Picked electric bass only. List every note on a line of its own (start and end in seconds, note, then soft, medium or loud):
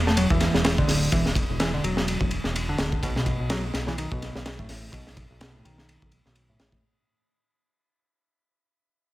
0.07 0.16 A3 medium
0.17 0.28 F#3 medium
0.31 0.77 E3 loud
0.78 1.11 D3 medium
1.13 1.25 E3 medium
1.60 1.70 E3 medium
1.74 1.83 D3 medium
1.84 2.31 F#3 medium
2.69 3.02 D3 medium
3.03 3.13 B2 loud
3.16 3.50 B2 medium
3.50 3.63 F#3 loud
3.88 3.97 E3 medium
3.98 4.08 D#3 medium
4.12 4.58 B2 loud
4.59 4.92 A2 medium
4.93 5.06 B2 medium
5.41 5.51 B2 medium
5.55 5.64 A2 medium
5.65 6.11 D#3 medium
6.50 6.83 A2 medium